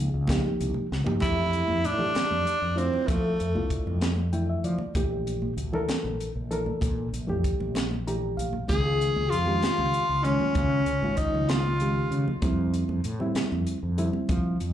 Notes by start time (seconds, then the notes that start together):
0.14 C#2
0.28 F3 A#3 D#4 G4, kick, snare, closed hi-hat, muted conga
0.44 high conga, low conga
0.61 C2, closed hi-hat
0.74 muted fretless electric bass stroke, low conga
0.92 C#2, snare
1.04 F3 A#3 D#4 G4, muted fretless electric bass stroke, floor tom, high conga
1.20 F2 E3 A3 D4 E4 G4, kick, closed hi-hat, muted conga
1.24 E4
1.53 closed hi-hat, low conga
1.68 F2, high conga
1.84 A2 D4, closed hi-hat
1.98 E3 A3 D4 G4, low conga
2.15 snare, closed hi-hat, muted conga, low conga
2.31 F2, high conga
2.47 closed hi-hat
2.62 F2
2.76 A3 C4 D4 E4 F4, closed hi-hat
2.93 low conga
3.07 F3 A3, kick, closed hi-hat, muted conga
3.40 F2, closed hi-hat, low conga
3.55 C2 A3 D4 E4 F4, high conga
3.70 kick, closed hi-hat
3.86 F2, low conga
4.01 snare, closed hi-hat, muted conga, low conga
4.16 high conga
4.33 E3 A3 D4 E4 G5, closed hi-hat
4.49 E5
4.64 F3 D5, closed hi-hat
4.78 high conga, low conga
4.95 A#1 E3 A3 D4 G4, kick, closed hi-hat, muted conga
5.27 closed hi-hat, low conga
5.42 A#1, high conga
5.57 D2, closed hi-hat
5.73 E3 D4 A4 A#4, low conga
5.89 snare, closed hi-hat, muted conga, low conga
6.04 A#1, high conga
6.20 closed hi-hat
6.35 A#1
6.51 E3 D4 A4 A#4, closed hi-hat
6.66 muted fretless electric bass stroke, high conga, low conga
6.81 A#2, kick, closed hi-hat, muted conga, low conga
7.13 A#1, closed hi-hat
7.27 F2 E3 A3 D4 G4, high conga, low conga
7.44 kick, closed hi-hat
7.60 A#1, low conga
7.75 snare, closed hi-hat, muted conga, low conga
7.91 high conga
8.07 E3 A3 D4 G4 A#5, closed hi-hat
8.22 low conga
8.37 A#1 F5, closed hi-hat, low conga
8.53 high conga, low conga
8.68 C#2 D#3 G#3 C#4 F4 G#4, kick, closed hi-hat, muted conga
9.01 closed hi-hat, low conga
9.16 C#2, high conga
9.30 F2 F4, closed hi-hat
9.46 D#3 G#3 C#4 G4, low conga
9.62 snare, closed hi-hat, muted conga, low conga
9.78 C#2, high conga
9.94 closed hi-hat
10.09 C#2
10.23 D#3 G#3 C#4 F4, closed hi-hat
10.40 high conga, low conga
10.55 C#3, kick, closed hi-hat, muted conga
10.86 C#2, closed hi-hat, low conga
11.01 G#1 D#3 G#3 C#4 F4, high conga
11.17 D#4, kick, closed hi-hat
11.33 C#2, low conga
11.49 F4, snare, closed hi-hat, muted conga, low conga
11.66 high conga
11.80 D#3 G#3 C#4 G4, closed hi-hat
12.11 C#3, closed hi-hat
12.28 high conga, low conga
12.42 F2 D3 G3 C4 E4, kick, closed hi-hat, muted conga
12.74 closed hi-hat, low conga
12.89 F2, high conga
13.04 A2, closed hi-hat
13.19 D3 G3 C4 E4, low conga
13.35 snare, closed hi-hat, muted conga, low conga
13.52 F2, high conga
13.67 closed hi-hat
13.83 F2
13.98 D3 G3 C4 E4, closed hi-hat
14.13 muted fretless electric bass stroke, high conga, low conga
14.29 F3, kick, closed hi-hat, muted conga
14.46 low conga
14.60 F2, closed hi-hat, low conga